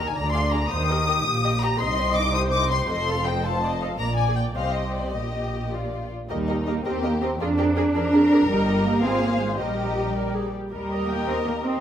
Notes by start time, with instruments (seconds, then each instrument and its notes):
Already playing: viola section A#4
0.07 violin section G#5
0.15 double bass section D2, cello section D3, viola section D5, violin section A#5
0.33 violin section G#4 F5 C6
0.52 violin section G#4 F5 A#5
0.70 double bass section D#2, cello section D#3, viola section C5, violin section D#6
0.90 violin section G4 D#5, viola section A#4
1.07 viola section G4, violin section G4 D#5
1.25 double bass section A#1, cello section A#2
1.44 violin section G4 D#5
1.61 violin section G4 D#5 A#5
1.79 double bass section C2, cello section C3, violin section D#4 D#5 C6, viola section D#5
1.98 violin section G4 C5
2.15 violin section D#4 D#5 D6
2.34 violin section G4 C5 D#6, viola section C5
2.52 violin section D#4 D#5 D6
2.70 violin section G4 C5 C6
2.89 double bass section F1, cello section F2, viola section A4, violin section C5 D#5 C6
3.09 violin section A4 F5
3.25 violin section C5 D#5 G5
3.44 violin section A4 F5 A5, viola section C5
3.62 violin section C5 D#5, viola section D5
3.82 violin section A4 F5, viola section D#5
3.98 double bass section A#1, cello section A#2, violin section A#4 D5 A#5, viola section D5
4.17 violin section G#5
4.27 violin section G#4
4.36 violin section G5
4.55 double bass section C2, cello section C3, violin section G4 D#5 F5, viola section C5
4.73 violin section D#5
4.93 violin section D5
5.12 double bass section A#1, cello section A#2, viola section G4, violin section G4 D#5
5.73 violin section F4 D5
6.29 double bass section D#2, cello section G3, violin section D#4 D#5, viola section G4 A#4
6.48 viola section G4 A#4, violin section D#5
6.67 cello section A#3, viola section G4 A#4, violin section D#5
6.84 double bass section D#2, cello section C4, viola section G4 A#4, violin section G4 D#5
7.03 cello section A#3, viola section G4 A#4, violin section D#5
7.21 cello section C4, viola section G4 A#4, violin section D#5
7.39 double bass section F2, cello section D4, violin section F4 D5, viola section G#4 A#4
7.57 violin section G4 D5, viola section G#4 A#4
7.76 violin section G#4 D5, viola section G#4 A#4
7.94 double bass section F2, viola section G#4 A#4, violin section A#4 D5
8.13 viola section G#4 A#4, violin section D5
8.31 viola section G#4 A#4, violin section D5
8.48 double bass section G1, cello section G3, viola section G4 A#4, violin section D#5
8.85 cello section A#3
9.03 double bass section G#1, cello section C4, viola section F4 C5, violin section G#4 F5
9.22 cello section A#3
9.40 cello section G#3
9.58 double bass section A#1, cello section G3, viola section G4 A#4, violin section G4 D#5
10.15 viola section A#4, violin section D5
10.35 viola section G#4
10.54 viola section G4
10.71 double bass section D#2, cello section G3, viola section G4 A#4, violin section A#4 D#5
10.91 viola section D#5
11.09 cello section A#3, viola section G5
11.27 cello section C4, viola section D#5
11.46 cello section A#3, viola section A#4
11.64 cello section C4, viola section D#5